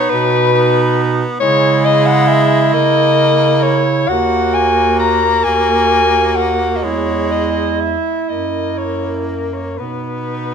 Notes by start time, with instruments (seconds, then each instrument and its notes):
Already playing: tenor saxophone B3, clarinet D#4, soprano saxophone C#5
0.10 bass clarinet B2, soprano saxophone B4
0.53 tenor saxophone B3, clarinet D#4
1.40 bass clarinet C#3, tenor saxophone G#3, clarinet E4, soprano saxophone C#5
1.85 soprano saxophone D#5
2.06 soprano saxophone F#5
2.29 soprano saxophone E5
2.73 bass clarinet C#3, tenor saxophone A#3, soprano saxophone D#5
3.63 soprano saxophone C#5
4.08 bass clarinet D#2, tenor saxophone A#3, clarinet F#4, soprano saxophone F#5
4.54 soprano saxophone G#5
4.99 soprano saxophone A#5
5.44 bass clarinet D#2, clarinet F#4, soprano saxophone G#5
6.36 soprano saxophone F#5
6.76 soprano saxophone D#5
6.83 bass clarinet E2, tenor saxophone G#3, clarinet E4, soprano saxophone C#5
7.31 soprano saxophone D#5
7.80 soprano saxophone E5
8.27 bass clarinet F#2, tenor saxophone A#3, soprano saxophone D#5
8.78 soprano saxophone C#5
9.27 soprano saxophone A#4
9.54 soprano saxophone C#5
9.78 bass clarinet B2, tenor saxophone B3, clarinet D#4, soprano saxophone B4